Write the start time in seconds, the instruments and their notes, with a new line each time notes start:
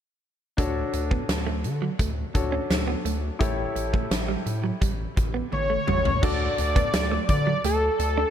0.57 analog synth bass D2, grand piano D4 F#4 A4 C#5, clean electric guitar D4, kick, closed hi-hat
0.93 analog synth bass D2, muted clean electric guitar stroke, closed hi-hat
1.11 clean electric guitar B3, kick
1.29 analog synth bass D2, snare, closed hi-hat
1.47 clean electric guitar A3
1.64 analog synth bass D3, muted clean electric guitar stroke, closed hi-hat
1.82 clean electric guitar F#3
1.99 analog synth bass D2, clean electric guitar A3, kick, closed hi-hat
2.34 analog synth bass D2, grand piano D4 F#4 A4 C#5, muted clean electric guitar stroke, kick, closed hi-hat
2.52 clean electric guitar C#4
2.70 analog synth bass D2, muted clean electric guitar stroke, snare, closed hi-hat
2.88 clean electric guitar B3
3.05 analog synth bass D2, clean electric guitar A3, closed hi-hat
3.39 analog synth bass A1, clean electric guitar A3, grand piano E4 G4 A4 C#5, kick, closed hi-hat
3.76 analog synth bass A1, muted clean electric guitar stroke, closed hi-hat
3.93 clean electric guitar A3, kick
4.11 analog synth bass A1, snare, closed hi-hat
4.28 clean electric guitar G3
4.46 analog synth bass A2, muted clean electric guitar stroke, closed hi-hat
4.64 clean electric guitar F#3
4.81 analog synth bass A1, clean electric guitar G3, kick, closed hi-hat
5.17 analog synth bass A1, muted clean electric guitar stroke, kick, closed hi-hat
5.34 clean electric guitar B3
5.52 analog synth bass A1, analog synth lead C#5, muted clean electric guitar stroke, high tom
5.70 clean electric guitar A3
5.87 analog synth bass A1, clean electric guitar G3, mid tom
6.05 floor tom
6.22 analog synth bass D2, grand piano D4 F#4 A4 D5, clean electric guitar D4, analog synth lead D5, kick, crash
6.58 analog synth bass D2, muted clean electric guitar stroke, closed hi-hat
6.76 clean electric guitar B3, kick, closed hi-hat
6.94 analog synth bass D2, snare, closed hi-hat, tambourine
7.11 clean electric guitar A3
7.29 analog synth bass D3, analog synth lead D5, muted clean electric guitar stroke, kick, closed hi-hat
7.47 clean electric guitar F#3
7.64 analog synth bass D2, clean electric guitar A3, analog synth lead A4, closed hi-hat
7.99 analog synth bass D2, muted clean electric guitar stroke, closed hi-hat
8.18 clean electric guitar D4